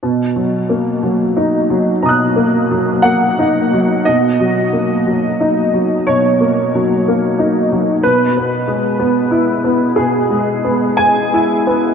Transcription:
<<
  \new Staff \with { instrumentName = "Upright piano" } { \time 4/4 \key b \major \tempo 4 = 60 << { r2 <ais'' dis''' fis'''>2 | r1 | r1 | } \\ { r2. fis''4 | dis''2 cis''2 | b'2 gis'4 gis''4 | } >> }
  \new Staff \with { instrumentName = "Upright piano" } { \clef bass \time 4/4 \key b \major \tuplet 3/2 { b,8 fis8 ais8 fis8 dis'8 fis8 b,8 ais8 fis8 ais8 dis'8 fis8 } | \tuplet 3/2 { b,8 fis8 ais8 fis8 dis'8 fis8 b,8 ais8 fis8 ais8 dis'8 fis8 } | \tuplet 3/2 { b,8 b8 gis8 b8 e'8 b8 b,8 gis8 b8 gis8 e'8 b8 } | }
>>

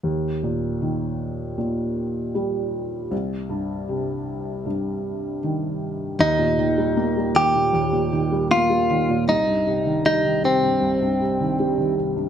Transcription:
<<
  \new Staff \with { instrumentName = "Clean electric guitar" } { \time 4/4 \key ees \major \tempo 4 = 78 r1 | r1 | ees'4. g'4. f'4 | ees'4 ees'8 c'2 r8 | }
  \new Staff \with { instrumentName = "Felt piano" } { \clef bass \time 4/4 \key ees \major ees,8 bes,8 ees4 bes,4 g4 | c,8 g,8 c4 g,4 ees4 | ees,16 bes,16 ees16 g16 bes16 g16 ees16 bes,16 ees,16 bes,16 ees16 g16 bes16 g16 ees16 bes,16 | c,16 g,16 c16 ees16 g16 ees16 c16 g,16 c,16 g,16 c16 ees16 g16 ees16 c16 g,16 | }
>>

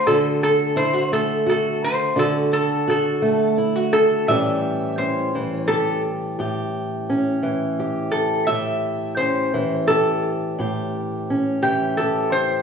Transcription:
<<
  \new Staff \with { instrumentName = "Resonator guitar played with a steel bar" } { \time 12/8 \key a \mixolydian \tempo 4. = 57 a'8 a'8 c''8 a'8 a'8 c''8 a'8 a'8 a'4 r8 a'8 | e''4 c''4 a'8 r2. a'8 | e''4 c''4 a'8 r2 g'8 a'8 c''8 | }
  \new Staff \with { instrumentName = "Steel-string acoustic guitar" } { \time 12/8 \key a \mixolydian << { fis'4 e'16 fis'8. fis'4 fis'4 fis'4 e'16 fis'8. | <e g cis' g'>4 cis'4 g'4 g'4 cis'4 g'4 | g'4 cis'4 g'4 g'4 cis'4 g'4 | } \\ { d4. a4. d4. a4. | a,4. e4. a,4. e4. | a,4. e4. a,4. e4. | } >> }
>>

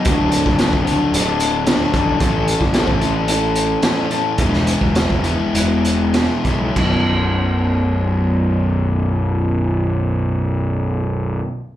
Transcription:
<<
  \new Staff \with { instrumentName = "Clean electric guitar" } { \time 4/4 \key e \major \tempo 4 = 102 <d, a, d fis a d'>4 <d fis a d'>8 <d fis a d'>8 <d fis a d'>4 <d, a, d fis a d'>8 <d fis a d'>8 | <a, e a cis' e' a'>4 <a cis' e' a'>8 <a cis' e' a'>8 <a cis' e' a'>4 <a, e a cis' e' a'>8 <a cis' e' a'>8 | <e, b, e gis b e'>4 <e gis b e'>8 <e gis b e'>8 <e gis b e'>4 <e, b, e gis b e'>8 <e gis b e'>8 | <b,, fis, b, fis dis'>1~ |
<b,, fis, b, fis dis'>1 | }
  \new Staff \with { instrumentName = "Overdriven electric guitar" } { \time 4/4 \key e \major <d, a, d fis a d'>4 <d fis a d'>8 <d fis a d'>8 <d fis a d'>4 <d, a, d fis a d'>8 <d fis a d'>8 | <a, e a cis' e' a'>4 <a cis' e' a'>8 <a cis' e' a'>8 <a cis' e' a'>4 <a, e a cis' e' a'>8 <a cis' e' a'>8 | <e, b, e gis b e'>4 <e gis b e'>8 <e gis b e'>8 <e gis b e'>4 <e, b, e gis b e'>8 <e gis b e'>8 | <b,, fis, b,>1~ |
<b,, fis, b,>1 | }
  \new Staff \with { instrumentName = "Picked electric bass" } { \clef bass \time 4/4 \key e \major d,,8. d,,8 d,,8 r16 d,,4. a,,8 | a,,8. a,,8 a,,2 r8. | e,,8. e,,8 e,,8 r16 e,,4. b,,8 | b,,,1~ |
b,,,1 | }
  \new DrumStaff \with { instrumentName = "Drums" } \drummode { \time 4/4 <hh bd>8 hh16 bd16 <hh sn>16 bd16 hh8 hh8 hh8 <hh sn>8 <hh bd>8 | <hh bd>8 hh16 bd16 <hh sn>16 bd16 hh8 hh8 hh8 <hh sn>8 hh8 | <hh bd>16 sn16 hh16 bd16 <hh sn>16 bd16 hh8 hh8 hh8 <hh sn>8 <hh bd>8 | <cymc bd>4 r4 r4 r4 |
r4 r4 r4 r4 | }
>>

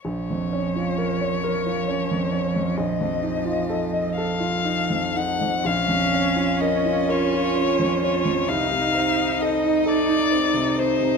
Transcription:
<<
  \new Staff \with { instrumentName = "Violin" } { \time 12/8 \key bes \minor \tempo 4. = 43 des''2. ees''4. f''4 ges''8 | f''4 ees''8 des''4 des''8 f''4 ees''8 d''4 c''8 | }
  \new Staff \with { instrumentName = "Cello" } { \time 12/8 \key bes \minor f1. | des'4. f'4. ees'2. | }
  \new Staff \with { instrumentName = "Violin" } { \time 12/8 \key bes \minor r1. | des'2. ees'2. | }
  \new Staff \with { instrumentName = "Grand piano" } { \time 12/8 \key bes \minor bes,,16 f,16 des'16 f'16 bes'16 des''16 bes'16 f'16 des'16 f,16 des'16 f,16 bes,,16 f,16 ees'16 f'16 a'16 ees''16 a'16 f'16 ees'16 f,16 ees'16 f,16 | bes,,16 f,16 des'16 f'16 bes'16 f'16 bes'16 f'16 des'16 f,16 des'16 f,16 c,16 c16 c'16 ees'16 a'16 ees'16 a'16 ees'16 c'16 c16 c'16 c16 | }
>>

